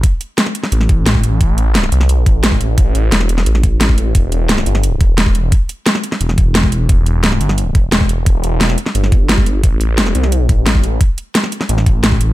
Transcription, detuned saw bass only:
X:1
M:4/4
L:1/8
Q:1/4=175
K:Em
V:1 name="Detuned saw bass" clef=bass
z4 A,,, A,,,3 | A,,,3 C,,2 A,,,3 | A,,,2 E,,,2 A,,,2 A,,, A,,, | E,,,3 G,,,2 E,,,3 |
z4 E,,, E,,,3 | E,,,3 G,,,2 E,,,3 | E,,,3 z G,,,4 | A,,,3 C,,2 A,,,3 |
z4 A,,, A,,,3 |]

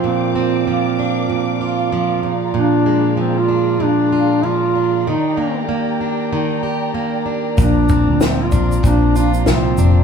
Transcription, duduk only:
X:1
M:4/4
L:1/16
Q:"Swing 16ths" 1/4=96
K:Bb
V:1 name="Duduk"
C4 z12 | D4 C F3 D4 F4 | E4 z12 | D4 C F3 D2 D2 C4 |]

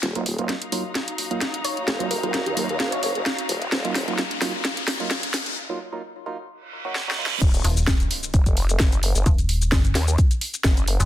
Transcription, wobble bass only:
X:1
M:4/4
L:1/16
Q:"Swing 16ths" 1/4=130
K:Ebm
V:1 name="Wobble bass" clef=bass
E,,,4 z12 | F,,,2 E,,,3 E,,3 G,,,3 G,,, z2 E,,,2 | E,,,4 z12 | z16 |
E,,,2 z6 E,,, F,,,3 G,,,3 G,,, | z6 E,,2 z4 G,,,3 z |]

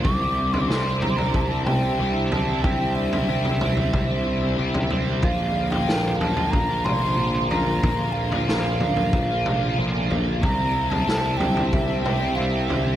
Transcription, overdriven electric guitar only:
X:1
M:4/4
L:1/16
Q:1/4=92
K:Cmix
V:1 name="Overdriven electric guitar"
[C,G,CE] [G,CE]2 [G,CE] [C,G,CE]2 [C,G,CE] [G,CE]2 [G,CE] [C,G,CE] [G,CE] [C,G,CE]2 [C,G,CE] [G,CE] | [C,G,CE] [G,CE]2 [G,CE] [C,G,CE]2 [C,G,CE] [G,CE]2 [G,CE] [C,G,CE] [G,CE] [C,G,CE]2 [C,G,CE] [G,CE] | [B,,D,F,B,F] [F,B,F]2 [F,B,F] [B,,D,F,B,F]2 [D,F,B,F] [F,B,F]2 [F,B,F] [D,F,B,F] [F,B,F] [B,,D,F,B,F]2 [D,F,B,F] [F,B,F] | [B,,D,F,B,F] [F,B,F]2 [F,B,F] [B,,D,F,B,F]2 [D,F,B,F] [F,B,F]2 [F,B,F] [D,F,B,F] [F,B,F] [B,,D,F,B,F]2 [D,F,B,F] [F,B,F] |
[C,G,CE] [G,CE]2 [G,CE] [C,G,CE]2 [C,G,CE] [G,CE]2 [G,CE] [C,G,CE] [G,CE] [C,G,CE]2 [C,G,CE] [G,CE] |]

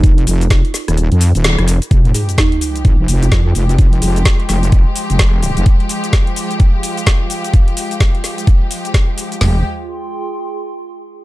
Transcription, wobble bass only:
X:1
M:4/4
L:1/16
Q:"Swing 16ths" 1/4=128
K:Fm
V:1 name="Wobble bass" clef=bass
F,,,2 F,,,2 F,,, z2 E,,,2 F,,2 E,,,2 F,,,2 z | F,,,2 z6 A,,, F,,, F,,,2 F,,2 F,,,2- | F,,,2 F,,,2 z2 F,,,3 z2 F,,,4 F,,, | z16 |
z16 | F,,,2 z12 z2 |]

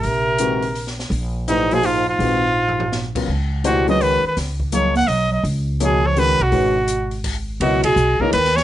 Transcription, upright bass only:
X:1
M:3/4
L:1/8
Q:"Swing" 1/4=167
K:Dbmix
V:1 name="Upright bass" clef=bass
B,,,6 | B,,,6 | B,,,6 | D,,4- D,, z |
D,,4 C,,2 | D,,4- D,, C,, | A,,,6 | [K:C#dor] _D,,2 _C,, z _E,,2 |]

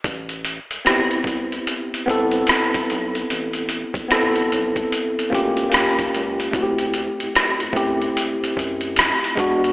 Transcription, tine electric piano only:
X:1
M:4/4
L:1/8
Q:"Swing 16ths" 1/4=74
K:Ador
V:1 name="Tine electric piano"
z2 [B,CEG]3 [B,CEA]3 | z2 [B,CEA]3 [_B,^C=FG] [^A,C^EG] z | [A,CEFG] z2 [A,CEG] z3 [^G,B,DF] |]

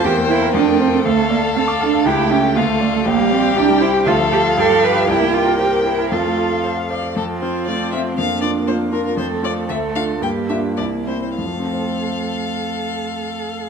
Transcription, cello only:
X:1
M:2/4
L:1/16
Q:1/4=118
K:F
V:1 name="Cello"
G2 E2 D2 C C | A,2 B,2 C2 D2 | E2 ^C2 B,2 A, A, | B,2 C2 D2 E2 |
F2 G2 A2 =B2 | E2 F2 G2 E2 | F4 z4 | F8 |
D4 F4 | A4 A4 | G4 E2 z2 | A,8- |
A,8 |]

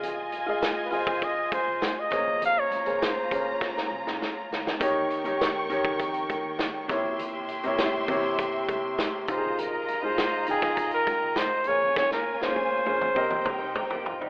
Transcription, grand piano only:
X:1
M:4/4
L:1/16
Q:1/4=100
K:Fm
V:1 name="Grand piano"
[FAe]2 z [FAe]2 z [FAe]6- [FAe] z [B,Acd]2- | [B,Acd]2 z [B,Acd]2 z [B,DAc]6- [B,DAc] z3 | [E,EGd]2 z [E,EGd]2 z [E,EGd]6- [E,EGd] z [C,B,=Ed]2- | [C,B,=Ed]2 z [C,B,Ed]2 z [C,B,Ed]6- [C,B,Ed] z [_EFGA]2- |
[EFGA]2 z [EFA]2 z [EFg]6- [EFg] z [B,ABd]2- | [B,ABd]2 z [B,DAc]2 z [B,DAc]2 [CGBe]6- [CGBe] z |]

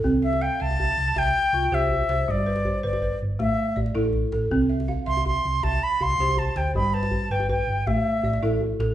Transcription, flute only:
X:1
M:12/8
L:1/8
Q:3/8=107
K:C
V:1 name="Flute"
z e g a3 g3 e3 | d3 d2 z e2 z4 | z3 c' c'2 a b c'2 a g | b a2 g g2 e4 z2 |]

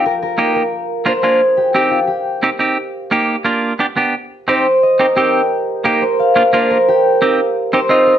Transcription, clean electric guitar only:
X:1
M:4/4
L:1/8
Q:1/4=176
K:Cm
V:1 name="Clean electric guitar"
z2 [B,EG] z3 [B,DF] [B,DF] | z2 [CEG] z3 [CEG] [CEG] | z2 [B,EG] z [B,DF]2 [=B,DG] [B,DG] | z2 [CEG] z2 [CEG] [CEG] z |
z2 [B,EG] z2 [B,DF] [B,DF] z | z2 [CEG] z2 [CEG] [CEF] z |]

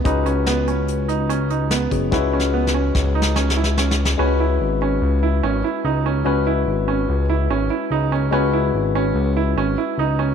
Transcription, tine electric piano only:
X:1
M:5/4
L:1/8
Q:1/4=145
K:C#m
V:1 name="Tine electric piano"
[G,CFB]8- [G,CFB] [G,CFG] | [G,CFB]8- [G,CFB]2 | [G,CFB]8- [G,CFB]2 | [G,CFB]8- [G,CFB]2 |
[G,CFB]8- [G,CFB]2 |]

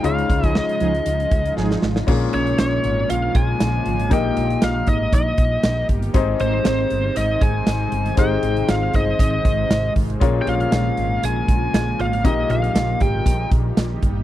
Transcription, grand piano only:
X:1
M:4/4
L:1/8
Q:"Swing 16ths" 1/4=118
K:Ab
V:1 name="Grand piano"
[EFAd]8 | [DFABd]8 | [B,EGBe]8 | [CEAce]8 |
[A,CEce]8 | [DFABd]8 | [B,EGBe]8 |]
V:2 name="Grand piano" clef=bass
D,3 z4 z | B,,3 z4 z | B,,3 z4 z | A,,3 z4 z |
A,,3 z4 z | B,,3 z4 z | B,,3 z4 z |]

